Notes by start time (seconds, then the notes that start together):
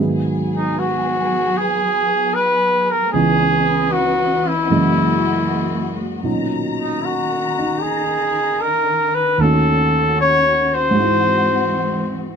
Already playing: G#2 D#3 F#3 B3 G#4 E5
0.00 B3 G#4
0.57 D#4
0.79 F#4
1.58 G#4
2.34 B4
2.90 A#4
3.12 C#2 C#3 E3 B3 C#4 G#4 B4 D#5
3.92 F#4
4.47 E4
4.67 F#2 C#3 E3 G#3 A#3 F#4
4.71 G#3 A#3 D#5
6.24 A#2 B2 D#3 F#3 C#4 D#4 A#5
6.81 D#4
7.01 E4 F#4
7.59 D#4
7.78 G4 G#4
8.61 A#4
9.15 B4
9.38 D#2 D#3 A3 C#4 F#4 A4
9.42 C#4 F#4
10.21 C#5
10.74 C5
10.91 G#2 G#3
10.96 E3 G#3 C4
11.00 E4 F#4